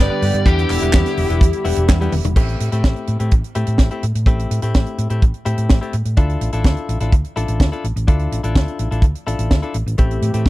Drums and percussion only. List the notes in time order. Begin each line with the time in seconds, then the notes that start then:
0.22 open hi-hat
0.34 closed hi-hat
0.46 kick, closed hi-hat
0.59 closed hi-hat
0.70 clap, open hi-hat
0.82 closed hi-hat
0.93 kick, snare, clap, closed hi-hat
1.06 snare, closed hi-hat
1.17 open hi-hat
1.30 closed hi-hat
1.41 kick, closed hi-hat
1.53 closed hi-hat
1.65 open hi-hat
1.76 closed hi-hat
1.88 kick, snare, clap, closed hi-hat, high tom
2.01 closed hi-hat, high tom
2.12 open hi-hat, mid tom
2.24 closed hi-hat, mid tom
2.36 kick, closed hi-hat, crash
2.49 closed hi-hat
2.60 closed hi-hat
2.72 closed hi-hat
2.84 kick, snare, closed hi-hat
2.96 closed hi-hat
3.07 closed hi-hat
3.20 closed hi-hat
3.31 kick, closed hi-hat
3.44 closed hi-hat
3.55 closed hi-hat
3.67 closed hi-hat
3.78 kick, snare, closed hi-hat
3.91 closed hi-hat
4.03 closed hi-hat
4.15 closed hi-hat
4.26 kick, closed hi-hat
4.39 closed hi-hat
4.51 closed hi-hat
4.62 closed hi-hat
4.74 kick, snare, closed hi-hat
4.86 closed hi-hat
4.98 closed hi-hat
5.10 closed hi-hat
5.22 kick, closed hi-hat
5.34 closed hi-hat
5.46 closed hi-hat
5.58 closed hi-hat
5.70 kick, snare, closed hi-hat
5.82 closed hi-hat
5.93 closed hi-hat
6.05 closed hi-hat
6.17 kick, closed hi-hat
6.30 closed hi-hat
6.41 closed hi-hat
6.53 closed hi-hat
6.64 kick, snare, closed hi-hat
6.77 closed hi-hat
6.89 closed hi-hat
7.00 closed hi-hat
7.12 kick, closed hi-hat
7.25 closed hi-hat
7.37 closed hi-hat
7.48 closed hi-hat
7.60 kick, snare, closed hi-hat
7.73 closed hi-hat
7.84 closed hi-hat
7.97 closed hi-hat
8.08 kick, closed hi-hat
8.19 closed hi-hat
8.32 closed hi-hat
8.44 closed hi-hat
8.55 kick, snare, closed hi-hat
8.68 closed hi-hat
8.79 closed hi-hat
8.92 closed hi-hat
9.02 kick, closed hi-hat
9.15 closed hi-hat
9.28 closed hi-hat
9.39 closed hi-hat
9.51 kick, snare, closed hi-hat
9.63 closed hi-hat
9.74 closed hi-hat
9.87 closed hi-hat
9.98 kick, closed hi-hat
10.11 closed hi-hat
10.22 closed hi-hat
10.34 closed hi-hat
10.46 kick, snare